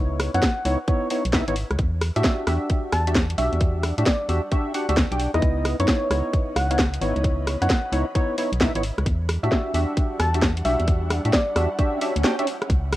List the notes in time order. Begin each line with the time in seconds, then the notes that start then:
Already playing: C#2 B3 C#4 D#4 E4 B4 C#5
0.20 cross-stick, open hi-hat
0.34 F#2 B3 D#4 E4 C#5 F#5, closed hi-hat
0.42 kick, snare, closed hi-hat
0.65 C#2 B3 D#4 E4 C#5, open hi-hat
0.88 B3 D#4 E4 C#5, kick, closed hi-hat
1.10 B3 D#4 E4 C#5, open hi-hat
1.25 B1, closed hi-hat
1.33 B3 D#4 E4 E5, kick, snare
1.48 G#1 B3 D#4 E4 C#5, closed hi-hat
1.56 open hi-hat
1.71 C#2, cross-stick, closed hi-hat
1.79 E2 D4, kick, closed hi-hat
1.95 G3
2.01 cross-stick, open hi-hat
2.16 A2 D4 F#4 G4 E5, closed hi-hat
2.24 kick, snare, closed hi-hat
2.47 E2 D4 F#4 G4 E5, cross-stick, open hi-hat
2.58 F#5
2.70 kick, closed hi-hat
2.92 E2 A5, cross-stick, open hi-hat
3.07 D4 F#4 G4 E5, closed hi-hat
3.15 kick, snare
3.30 closed hi-hat
3.38 B1 D4 F#4 G4 E5, open hi-hat
3.53 E2, closed hi-hat
3.60 kick, closed hi-hat
3.83 cross-stick, open hi-hat
3.98 A2 D4 F#4 G4 E5, closed hi-hat
4.06 D5, kick, snare, closed hi-hat
4.29 E2 D4 F#4 G4 E5, open hi-hat
4.51 D4 F#4 G4 E5, kick, closed hi-hat
4.74 D4 F#4 G4 F#5, open hi-hat
4.89 D2 D4 F#4 G4 E5, closed hi-hat
4.97 kick, snare
5.12 B1 D4 F#4 G4 G5, closed hi-hat
5.20 open hi-hat
5.34 E2 B3 D#4 E4 D#5, cross-stick, closed hi-hat
5.42 C#2 C#4, kick, closed hi-hat
5.65 cross-stick, open hi-hat
5.72 E3
5.80 F#2 B3 D#4 E4 C#5, closed hi-hat
5.88 kick, snare, closed hi-hat
5.92 D#5
6.10 C#2 B3 D#4 E4 C#5, cross-stick, open hi-hat
6.25 B5
6.33 kick, closed hi-hat
6.56 C#2 F#5, cross-stick, open hi-hat
6.71 B3 D#4 E4 C#5 F#5, closed hi-hat
6.79 kick, snare
6.94 closed hi-hat
7.01 G#1 B3 D#4 E4 C#5, open hi-hat
7.16 C#2, closed hi-hat
7.24 kick, closed hi-hat
7.47 cross-stick, open hi-hat
7.62 F#2 B3 D#4 E4 C#5 F#5, closed hi-hat
7.70 kick, snare, closed hi-hat
7.92 C#2 B3 D#4 E4 C#5, open hi-hat
8.15 B3 D#4 E4 C#5, kick, closed hi-hat
8.38 B3 D#4 E4 C#5, open hi-hat
8.52 B1, closed hi-hat
8.61 B3 D#4 E4 E5, kick, snare
8.75 G#1 B3 D#4 E4 C#5, closed hi-hat
8.83 open hi-hat
8.98 C#2, cross-stick, closed hi-hat
9.06 E2 D4, kick, closed hi-hat
9.13 G3
9.29 E4, cross-stick, open hi-hat
9.43 A2 D4 F#4 G4 E5, closed hi-hat
9.51 kick, snare, closed hi-hat
9.59 F#5
9.74 E2 D4 F#4 G4 E5, open hi-hat
9.97 kick, closed hi-hat
10.19 E2 A5, cross-stick, open hi-hat
10.34 D4 F#4 G4 E5, closed hi-hat
10.42 kick, snare
10.57 closed hi-hat
10.65 B1 D4 F#4 G4 E5, open hi-hat
10.80 E2, closed hi-hat
10.88 kick, closed hi-hat
11.11 cross-stick, open hi-hat
11.25 A2 D4 F#4 G4 E5, closed hi-hat
11.33 D5, kick, snare, closed hi-hat
11.56 E2 D4 F#4 G4 E5, cross-stick, open hi-hat
11.79 D4 F#4 G4 E5, kick, closed hi-hat, swell
12.01 D4 F#4 G4 E5, open hi-hat
12.16 D2, closed hi-hat
12.24 D4 F#4 G4 G5, snare
12.39 D4 F#4 G4 E5, closed hi-hat
12.47 open hi-hat
12.62 cross-stick, closed hi-hat
12.70 C#2 C#4, kick, closed hi-hat
12.92 cross-stick, open hi-hat